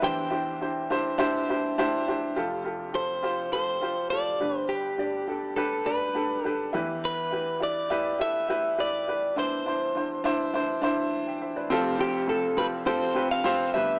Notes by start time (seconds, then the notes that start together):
0.02 E2 E3 D4 E4 G4 C5 G5
0.30 D4 E4 G4 C5
0.61 D4 E4 G4 C5
0.90 D4 E4 G4 C5
1.18 D4 E4 G4 C5
1.49 D4 E4 G4 C5
1.78 D4 E4 G4 C5
2.08 D4 E4 G4 C5
2.36 F1 F2 F4 G4 A4
2.64 F4 G4 A4
2.93 F4 G4 A4 C5
3.23 F4 G4 C5
3.52 F4 G4 A4 C5
3.81 F4 G4 C5
4.10 F4 G4 A4 D5
4.40 G1 G2 D4 G4 B4
4.57 C5
4.69 G4
4.98 D4 G4 D5
5.27 D4 G4 A4
5.56 D4 G4 A4 B4
5.85 D4 G4 B4 D5
6.15 D4 G4 A4
6.44 D4 G4 A4 B4
6.73 E2 E3 E4 G4 B4
7.05 B4
7.31 E4 G4 B4
7.60 E4 G4 D5
7.90 E4 G4 B4
8.19 E4 G4 A4 E5
8.49 E4 G4 B4
8.78 E4 G4 B4 D5
9.08 E4 G4 B4
9.36 E2 E3 D4 E4 C5
9.66 D4 E4 C5
9.95 D4 E4 C5
10.24 D4 E4 C5
10.54 D4 E4 C5
10.82 D4 E4 C5
11.27 E5 G5
11.42 C5 E5
11.56 B4 D5
11.70 F1 F2 C4 F4 G4 A4
11.99 C4 F4 G4 C5
12.28 C4 F4 G4 A4
12.57 C4 F4 G4 A4 B4
12.86 C4 F4 G4 A4 C5
13.14 C4 F4 G4 B4
13.31 F5
13.44 C4 F4 G4 C5
13.74 G1 G2 B3 D4 G4 B4 E5